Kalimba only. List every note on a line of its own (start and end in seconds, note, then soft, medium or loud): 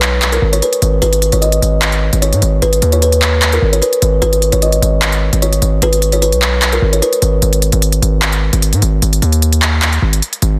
0.00 0.30 B4 medium
0.32 0.51 A#4 medium
0.53 0.62 C#5 medium
0.63 1.00 B4 medium
1.02 1.31 B4 loud
1.32 1.41 C#5 medium
1.42 2.18 D#5 medium
2.22 2.60 C#5 medium
2.62 2.91 B4 loud
2.93 3.02 C#5 medium
3.02 3.50 B4 medium
3.53 3.72 A#4 medium
3.73 3.82 C#5 medium
3.82 4.20 B4 medium
4.22 4.51 B4 loud
4.52 4.61 C#5 medium
4.62 5.38 D#5 medium
5.42 5.80 C#5 medium
5.83 6.11 B4 loud
6.13 6.22 C#5 medium
6.22 6.70 B4 medium
6.73 6.92 A#4 medium
6.93 7.02 C#5 medium
7.02 7.40 B4 medium